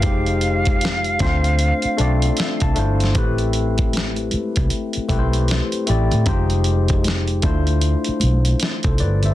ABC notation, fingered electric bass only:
X:1
M:4/4
L:1/16
Q:"Swing 16ths" 1/4=77
K:Ddor
V:1 name="Fingered electric bass" clef=bass
F,,,6 D,,3 z B,,,2 z C,, G,,,2 | A,,,6 z C,, z2 B,,,3 z A,,, A,, | F,,,6 D,,3 z B,,,2 z C,, G,,,2 |]